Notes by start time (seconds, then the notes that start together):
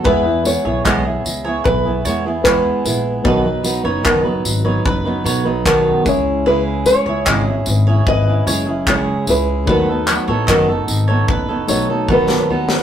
0.04 E2 E3 G#3 B3 E4 G#4 B4 E5, kick
0.24 B3 E4 G#4
0.45 G#3 B3 E4 G#4 C#5, tambourine
0.65 B1 B3 E4 G#4 C#5
0.85 B1 E3 G#3 B3 E4 G#4 D#5, kick, clap
1.04 B3 E4 G#4
1.25 C#2, tambourine
1.45 B3 E4 G#4 C#5
1.64 B1 B4, kick
1.85 B3 E4 G#4
2.05 E2 G#3 B3 E4 G#4 C#5, tambourine
2.25 B3 E4 G#4
2.44 E3 G#3 B3 E4 G#4 B4, kick, clap
2.85 A#1 G#3 B3 E4 G#4, tambourine
3.24 B1 B2 D#3 F#3 B3 D#4 F#4 B4 D#5, kick
3.28 D#5
3.44 F#3 B3 D#4 B4
3.63 F#3 B3 D#4 B4, tambourine
3.83 F#1 F#3 B3 D#4 B4 C#5
4.03 F#1 B2 D#3 F#3 B3 D#4 B4 D#5, kick, clap
4.23 F#3 B3 D#4 B4
4.45 G#1, tambourine
4.64 F#3 B3 D#4 B4 C#5
4.86 F#1 B4, kick
5.05 F#3 B3 D#4 B4
5.24 B1 F#3 B3 D#4 B4 C#5, tambourine
5.45 F#3 B3 D#4 B4
5.65 B2 D#3 F#3 B3 D#4 B4, kick, clap
6.05 C#2 G#3 C#4 E4 G#4 C#5, kick, tambourine
6.46 C#3 G#3 C#4 E4 G#4 B4
6.86 G#3 C#4 E4 G#4 C#5, tambourine
7.06 C#2 C#4 E4 G#4 C#5
7.25 G#1 C#3 G#3 C#4 E4 G#4 D#5, kick, clap
7.47 C#4 E4 G#4
7.66 G#1, tambourine
7.71 B4
7.87 C#4 E4 G#4 C#5
8.07 G#1 B4 D#5, kick
8.28 C#4 E4 G#4
8.47 F#1 G#3 C#4 E4 G#4 C#5, tambourine
8.67 C#4 E4 G#4
8.87 C#3 G#3 C#4 E4 G#4 C#5, kick, clap
9.27 C#2 G#3 C#4 E4 G#4 B4, tambourine
9.66 D#2 D#3 F#3 A3 B3 D#4 F#4 A4 B4, kick
9.70 B4
9.89 B3 D#4 A4
10.07 F#3 B3 D#4 A4, clap, tambourine
10.28 A1 B3 D#4 A4 C#5
10.47 F#1 D#3 F#3 B3 D#4 A4 D#5, kick, clap
10.69 B3 D#4 A4
10.88 G#1, tambourine
11.08 B3 D#4 A4 C#5
11.28 F#1 B4, kick
11.48 B3 D#4 A4
11.68 B1 F#3 A3 B3 D#4 F#4 A4 C#5, tambourine
11.89 B3 D#4 A4
12.09 D#3 F#3 B3 D#4 A4, kick
12.13 B4
12.29 snare
12.50 D#2 F#3 B3 D#4 A4
12.69 snare